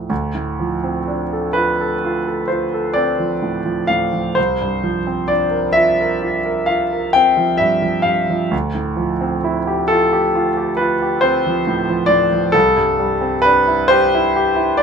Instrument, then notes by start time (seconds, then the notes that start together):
grand piano
Already playing: A2 F3 G6
0.10 D2
0.35 A2
0.60 F3
0.84 C4
1.07 D4
1.33 A4
1.53 F4 B4
1.81 A4
2.04 F4
2.27 A4
2.48 F4 C5
2.74 A4
2.93 C4 D5
3.20 F3
3.42 A2
3.65 F3
3.87 A2 F5
4.13 F3
4.35 C2 C5
4.61 G2
4.83 F3
5.07 C4
5.28 D4 D5
5.51 A#4
5.73 F4 E5
6.01 A#4
6.22 F4
6.46 A#4
6.66 F4 F5
6.93 A#4
7.13 C4 G5
7.37 F3
7.58 G2 E5
7.82 F3
8.02 G2 F5
8.30 F3
8.51 D2
8.75 A2
8.97 F3
9.21 C4
9.44 E4
9.67 G4
9.88 F4 A4
10.13 G4
10.35 F4
10.57 G4
10.77 F4 B4
11.02 G4
11.21 C4 C5
11.46 F3
11.67 A2
11.90 F3
12.06 A2 D5
12.32 F3
12.52 C2 A4
12.77 G2
12.99 G3
13.21 C4
13.42 D4 B4
13.67 E4
13.88 G4 C5
14.15 E4
14.36 G4
14.56 E4
14.77 G4 D5